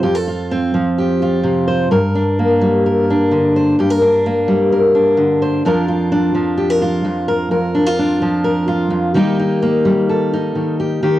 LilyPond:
\new Staff \with { instrumentName = "Steel-string acoustic guitar" } { \time 4/4 \key g \minor \tempo 4 = 128 << { g'16 a'16 f'8 c'4 g'8 f'4 c''8 | bes'8 d'8 bes4 bes'8 d'4 c''8 | g'16 bes'16 d'8 bes4 bes'8 d'4 c''8 | <f d' f' bes'>8 f'8 d'4 g'16 bes'16 f'4 bes'8 |
bes'8 d'16 f'16 d'4 bes'8 f'4 <g bes ees' g'>8 | ees'8 bes4 a'8 ees'4 g'8 g'8 | } \\ { <f, f>4. f4. c4 | g,4. g4. d4 | g,4. g4. d4 | f,4. f4. f,4 |
f,4. f4. f,8 ees8~ | ees4 g4. ees4 ees8 | } >> }